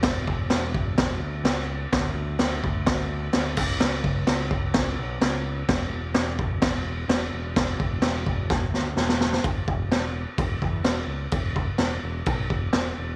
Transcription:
0.03 E1, kick, snare, crash
0.27 E1, kick
0.50 E1, snare, crash
0.74 E1, kick
0.98 E1, kick, snare, crash
1.19 D2
1.43 C#2, snare, crash
1.93 D2, kick, snare, crash
2.15 D2
2.39 D2, snare, crash
2.64 D2, kick
2.86 D2, kick, snare, crash
3.33 D2, snare, crash
3.57 C#2, kick, crash
3.80 C#2, snare, crash
4.04 C#2, kick
4.27 C#2, snare, crash
4.51 C#2, kick
4.74 C#2, kick, snare, crash
4.99 B1
5.21 C#2, snare, crash
5.68 E1, kick, snare, crash
5.92 E1
6.14 E1, snare, crash
6.39 E1, kick
6.61 E1, kick, snare, crash
7.08 E1, snare, crash
7.33 E1
7.56 E1, kick, snare, crash
7.79 E1, kick
8.02 E1, snare, crash
8.26 E1, kick
8.50 E1, kick, snare
8.70 D2, snare
8.96 E1, snare
9.09 snare
9.21 snare
9.33 snare
9.44 E1, kick, crash
9.68 E1, kick
9.87 E1
9.92 snare, crash
10.38 E1, kick, crash
10.62 E2, kick
10.83 E1, snare, crash
11.07 C#2
11.32 E1, kick, crash
11.56 kick
11.78 E1, snare, crash
12.03 E1
12.26 B1, kick, crash
12.50 E1, kick
12.73 E1, snare, crash
12.98 E1

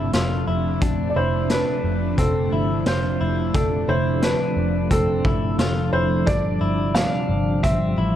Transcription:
Already playing: C3 F3 A3 D4 E4 A4
0.13 F1 F4, snare, closed hi-hat
0.48 F1 E4
0.81 F1 D4, kick, closed hi-hat
1.10 D5
1.16 F1 E4 C5
1.50 D4 B4, snare, closed hi-hat
1.84 F1
2.18 F1 C4 A4, kick, closed hi-hat
2.53 G1 E4 C5
2.86 F1 F4 C5, snare, closed hi-hat
3.21 F1 E4
3.54 F1 D4 A4, kick, closed hi-hat
3.89 F1 E4 C5
4.22 D4 B4, snare, closed hi-hat
4.57 F1
4.91 F1 C4 A4, kick, closed hi-hat
5.25 G1 E4, kick
5.59 F1 F4 A4, snare, closed hi-hat
5.93 F1 E4 C5
6.26 G1 C3 G3 D4 D5, kick, closed hi-hat
6.61 G1 E4
6.95 D4 F5, snare, closed hi-hat
7.29 G1 C5
7.63 G1 C4 E5, kick, closed hi-hat
7.98 A1 E4

